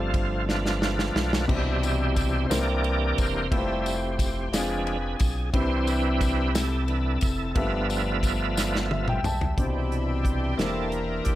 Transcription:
0.00 1.11 G1 loud
0.00 0.44 G2 medium
0.00 1.45 F3 medium
0.00 1.46 A3 soft
0.00 0.45 C4 medium
0.00 1.44 C4 medium
0.00 1.45 D4 medium
0.00 0.45 F4 medium
0.00 1.45 F4 medium
0.00 1.46 G4 medium
0.00 0.11 A4 medium
0.00 1.46 D5 medium
0.14 kick medium
0.14 ride medium
0.48 1.45 D4 medium
0.48 1.46 F4 medium
0.48 1.52 B4 medium
0.48 snare medium
0.66 snare medium
0.82 snare medium
0.99 snare medium
1.15 1.46 B1 medium
1.15 snare loud
1.33 snare medium
1.48 2.46 C2 loud
1.48 2.49 B2 medium
1.48 2.46 C3 medium
1.48 2.47 E3 soft
1.48 2.46 G3 soft
1.48 2.50 D4 medium
1.48 2.47 D4 medium
1.48 2.49 E4 medium
1.48 2.47 E4 medium
1.48 2.49 G4 medium
1.48 2.47 G4 medium
1.48 2.49 C5 medium
1.48 2.54 C5 medium
1.48 kick loud
1.48 crash medium
1.83 ride soft
1.83 tambourine soft
2.16 kick medium
2.16 ride medium
2.16 tambourine medium
2.49 3.14 C2 loud
2.49 3.47 C3 medium
2.49 3.47 E3 medium
2.49 3.51 A#3 medium
2.49 3.47 A#3 medium
2.49 3.51 C4 medium
2.49 3.48 D4 medium
2.49 3.50 E4 medium
2.49 3.51 G4 medium
2.49 3.48 G4 medium
2.49 3.47 A#4 medium
2.49 3.51 C5 medium
2.49 3.20 D5 loud
2.49 snare medium
2.49 ride medium
2.49 tambourine loud
2.84 ride soft
3.18 3.49 E1 loud
3.18 3.53 C5 loud
3.18 kick medium
3.18 ride medium
3.18 tambourine medium
3.51 4.49 F1 loud
3.51 3.96 G3 medium
3.51 3.96 A3 medium
3.51 4.52 A3 medium
3.51 4.49 C4 medium
3.51 4.52 E4 medium
3.51 4.52 F4 medium
3.51 4.56 G4 medium
3.51 4.53 G4 medium
3.51 3.58 B4 medium
3.51 3.96 E5 medium
3.51 kick loud
3.51 ride medium
3.59 4.56 C5 medium
3.86 ride soft
3.86 tambourine medium
4.19 kick medium
4.19 ride medium
4.19 tambourine medium
4.51 5.15 F1 loud
4.51 4.97 F3 medium
4.51 4.98 G#3 medium
4.51 5.52 C4 medium
4.51 5.54 D4 medium
4.51 4.98 D4 medium
4.51 5.54 F4 medium
4.51 5.54 G#4 medium
4.51 5.50 G#4 medium
4.51 5.16 B4 medium
4.51 5.54 D5 medium
4.51 snare medium
4.51 ride medium
4.51 tambourine loud
4.87 ride soft
5.20 5.51 B1 medium
5.20 kick loud
5.20 ride medium
5.20 tambourine medium
5.53 7.18 C2 loud
5.53 6.51 C3 medium
5.53 6.50 E3 medium
5.53 7.51 C4 medium
5.53 6.51 C4 medium
5.53 6.51 D4 medium
5.53 7.52 E4 medium
5.53 5.88 E4 medium
5.53 5.88 G4 medium
5.53 7.52 G4 medium
5.53 7.52 B4 medium
5.53 5.89 C5 loud
5.53 7.53 E5 medium
5.53 kick loud
5.53 ride medium
5.87 6.54 E4 medium
5.87 6.85 G4 medium
5.87 6.57 B4 loud
5.87 ride soft
5.87 tambourine medium
6.21 kick medium
6.21 ride medium
6.21 tambourine medium
6.55 7.52 E4 medium
6.55 7.21 A4 medium
6.55 snare loud
6.55 ride medium
6.55 tambourine loud
6.88 7.18 E3 medium
6.88 7.19 D4 medium
6.88 7.18 B4 soft
6.88 ride soft
7.21 7.53 F1 medium
7.21 7.56 A4 medium
7.21 kick loud
7.21 ride medium
7.21 tambourine medium
7.55 9.20 G1 loud
7.55 8.53 G2 medium
7.55 8.89 F3 medium
7.55 8.90 A3 soft
7.55 9.53 B3 medium
7.55 8.90 B3 medium
7.55 8.87 D4 medium
7.55 9.53 F4 medium
7.55 8.87 F4 medium
7.55 9.54 G4 medium
7.55 9.54 A4 medium
7.55 8.86 B4 medium
7.55 9.54 E5 medium
7.55 8.90 E5 medium
7.55 kick loud
7.55 ride medium
7.90 ride soft
7.90 tambourine medium
8.23 kick medium
8.23 ride medium
8.23 tambourine medium
8.57 snare medium
8.57 tambourine medium
8.75 snare medium
8.90 9.20 F3 soft
8.90 9.21 A3 soft
8.90 9.21 B3 soft
8.90 9.21 F4 medium
8.90 9.06 E5 medium
8.90 high tom medium
9.08 9.24 G5 medium
9.08 mid tom medium
9.23 9.54 B1 loud
9.23 9.56 A5 medium
9.23 mid tom loud
9.23 tambourine soft
9.41 floor tom medium
9.56 10.55 C2 loud
9.56 10.59 B2 medium
9.56 10.55 C3 soft
9.56 10.54 E3 soft
9.56 10.55 G3 soft
9.56 10.55 D4 medium
9.56 9.64 D4 soft
9.56 10.57 G4 medium
9.56 10.58 C5 medium
9.56 11.35 E5 medium
9.56 11.35 G5 medium
9.56 10.57 B5 medium
9.56 11.35 C6 medium
9.56 kick medium
9.56 closed hi-hat medium
9.65 10.57 E4 soft
9.90 10.25 E4 medium
9.90 closed hi-hat soft
10.24 10.59 G4 medium
10.24 kick medium
10.24 closed hi-hat medium
10.56 11.22 E1 medium
10.56 11.35 E3 soft
10.56 11.35 A#3 soft
10.56 11.35 A#3 medium
10.56 11.35 D4 medium
10.56 11.35 E4 soft
10.56 11.35 G4 soft
10.56 10.93 A4 medium
10.56 11.35 C5 medium
10.56 snare medium
10.56 closed hi-hat medium
10.90 11.26 A#4 medium
10.90 closed hi-hat soft
11.24 11.35 E1 medium
11.24 11.35 G4 medium
11.24 kick medium
11.24 closed hi-hat medium

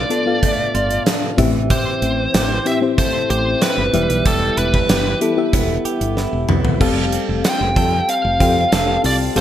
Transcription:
0.00 1.38 A2 medium
0.00 0.42 A3 medium
0.00 0.10 B3 medium
0.00 0.10 F4 medium
0.00 0.73 F4 medium
0.00 0.11 A4 medium
0.00 0.11 D5 medium
0.00 1.02 D5 medium
0.10 0.20 B3 medium
0.10 1.06 D4 medium
0.10 0.21 F4 medium
0.10 0.21 A4 medium
0.10 0.21 D5 medium
0.10 closed hi-hat medium
0.26 1.07 B3 medium
0.26 1.07 F4 medium
0.26 1.07 A4 medium
0.26 1.08 F5 medium
0.43 1.45 A3 medium
0.43 kick medium
0.43 closed hi-hat medium
0.74 0.98 G1 medium
0.74 1.45 F4 medium
0.74 closed hi-hat medium
0.91 closed hi-hat medium
1.06 1.45 D4 medium
1.06 snare medium
1.06 closed hi-hat medium
1.37 1.86 A1 medium
1.37 2.30 A2 medium
1.37 1.70 E3 medium
1.37 2.40 C4 medium
1.37 2.40 E4 medium
1.37 2.41 G4 medium
1.37 2.41 E5 loud
1.37 kick medium
1.37 closed hi-hat medium
1.70 3.94 E3 medium
1.70 2.34 G4 medium
1.70 2.69 C5 medium
1.70 kick loud
1.70 closed hi-hat medium
2.02 2.26 A1 medium
2.02 2.65 C4 medium
2.02 closed hi-hat medium
2.34 2.58 A1 medium
2.34 3.30 G4 medium
2.34 snare loud
2.34 closed hi-hat medium
2.65 2.76 C4 medium
2.65 3.61 C4 medium
2.65 2.76 E4 medium
2.65 2.76 G4 medium
2.65 2.76 E5 medium
2.65 2.75 E5 medium
2.65 closed hi-hat medium
2.82 3.62 C4 medium
2.82 3.63 E4 medium
2.82 3.63 G4 medium
2.82 3.63 C5 medium
2.98 4.00 A3 medium
2.98 3.28 C5 medium
2.98 kick medium
2.98 closed hi-hat medium
3.30 3.54 A1 medium
3.30 4.26 G4 medium
3.30 3.60 C5 medium
3.30 closed hi-hat medium
3.62 4.00 C4 medium
3.62 4.26 B4 medium
3.62 snare medium
3.62 closed hi-hat medium
3.78 3.90 G1 medium
3.93 4.05 E1 medium
3.93 4.85 E3 medium
3.93 4.25 G3 medium
3.93 4.96 B3 medium
3.93 4.96 E4 medium
3.93 4.96 G4 medium
3.93 4.96 E5 medium
3.93 closed hi-hat medium
4.09 4.21 B1 medium
4.09 closed hi-hat medium
4.26 4.50 E1 medium
4.26 6.80 G3 medium
4.26 4.90 G4 medium
4.26 4.58 A4 medium
4.26 kick loud
4.26 closed hi-hat medium
4.57 4.81 E1 medium
4.57 5.20 E4 medium
4.57 5.18 B4 medium
4.57 closed hi-hat medium
4.74 kick medium
4.89 5.13 G1 medium
4.89 5.85 G4 medium
4.89 snare loud
4.89 closed hi-hat medium
5.21 5.31 B3 medium
5.21 5.31 E4 medium
5.21 6.16 E4 medium
5.21 5.31 G4 medium
5.21 5.32 A4 medium
5.21 closed hi-hat medium
5.37 6.18 B3 medium
5.37 6.18 E4 medium
5.37 6.18 G4 medium
5.37 6.18 E5 medium
5.53 5.77 E1 loud
5.53 6.48 B3 medium
5.53 kick medium
5.53 closed hi-hat medium
5.85 6.81 G4 medium
5.85 muted fretless electric bass stroke soft
5.85 closed hi-hat medium
6.01 6.25 G1 medium
6.01 closed hi-hat medium
6.17 6.87 E4 medium
6.17 snare soft
6.33 6.45 E1 medium
6.49 6.73 C2 medium
6.49 6.87 B3 medium
6.49 mid tom medium
6.65 floor tom medium
6.80 7.17 F1 medium
6.80 9.36 G3 medium
6.80 7.61 C4 medium
6.80 7.61 G4 medium
6.80 7.61 A4 medium
6.80 7.76 A4 medium
6.80 7.62 F5 medium
6.80 kick loud
6.80 crash medium
7.12 8.07 C4 medium
7.12 closed hi-hat medium
7.29 7.41 F1 medium
7.45 8.39 F4 medium
7.45 8.11 G5 loud
7.45 snare loud
7.45 closed hi-hat medium
7.61 7.73 F1 medium
7.76 8.00 F2 medium
7.76 8.72 A4 medium
7.76 kick medium
7.76 closed hi-hat medium
8.09 9.41 C4 medium
8.09 9.01 F5 medium
8.09 closed hi-hat medium
8.25 8.37 F1 medium
8.40 8.64 F2 medium
8.40 8.80 C4 medium
8.40 9.03 F4 medium
8.40 8.81 G4 medium
8.40 8.81 A4 medium
8.40 8.81 G5 medium
8.40 kick medium
8.40 closed hi-hat medium
8.72 8.96 F1 medium
8.72 9.37 A4 medium
8.72 snare medium
8.72 closed hi-hat medium
9.04 9.28 C2 medium
9.04 9.24 C4 medium
9.04 9.41 F4 medium
9.04 9.24 G4 medium
9.04 9.24 A4 medium
9.04 9.14 D5 medium
9.04 9.25 F5 medium
9.04 open hi-hat medium
9.36 9.41 F1 medium
9.36 9.41 G3 medium
9.36 9.41 C4 medium
9.36 9.41 G4 medium
9.36 9.41 A4 medium
9.36 9.41 F5 medium
9.36 closed hi-hat medium

